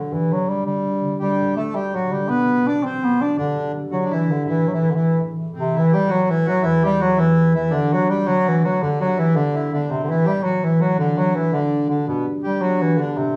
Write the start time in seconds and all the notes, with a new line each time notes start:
Already playing: D2 D3
0.11 G2 E3
0.31 D3 F#3
0.48 G3
0.66 D3 G3
0.86 G3
1.04 D3
1.20 D2 G3 G4
1.41 A2
1.57 D3 A3 A4
1.74 G3 G4
1.94 A2 F#3 F#4
2.11 D3 G3 G4
2.29 B2 B3 B4
2.48 F#3
2.65 B2 D4 D5
2.83 F#3 C4 C5
3.03 B2 B3
3.20 F#3 D4 D5
3.37 G2 D3 D4
3.57 D3
3.74 G3
3.91 D3 F#3 F#4
4.04 D4
4.11 E3 G3 E4
4.27 D3
4.32 D3
4.45 A2 E4
4.49 E3
4.65 E3 F#3
4.73 E3 E4
4.82 A2
4.91 D3
4.95 E3 E4
4.99 E3
5.20 A2
5.36 E3
5.53 A2 C4
5.58 C3
5.74 E4
5.79 E3
5.92 G3 G4
6.07 E3 A3 C4 F#4
6.11 F#3
6.29 E3 E4
6.45 E3 F#3 A3 C4 F#4
6.62 E2 E3 E4
6.82 G3 G4
7.00 F#3 F#4
7.16 E3 G3 B3 E4
7.54 E3 G3 B3 E4
7.70 D2 D3 D4
7.92 F#3 F#4
8.09 G3 G4
8.26 D3 F#3 A3 F#4
8.48 E3
8.63 D3 F#3 A3 F#4
8.81 G2 D3 D4
9.00 F#3 F#4
9.17 E3 E4
9.34 D3 G3 B3 D4
9.54 E4
9.72 D3 G3 B3 D4
9.89 A2 C3 C4
10.04 D3
10.09 E3 E4
10.25 G3 G4
10.43 E3 F#3 A3 C4 F#4
10.63 E3 E4
10.80 E3 F#3 A3 C4 F#4
10.98 D2 D3 D4
11.17 F#3 F#4
11.35 E3 E4
11.51 D3 F#3 A3 D4
11.89 D3 F#3 A3 D4
12.07 G2 B2 B3
12.43 G3 G4
12.61 F#3 G3 B3 D4 F#4
12.81 E3
12.98 D3 G3 B3 D4
13.16 A2 C3 C4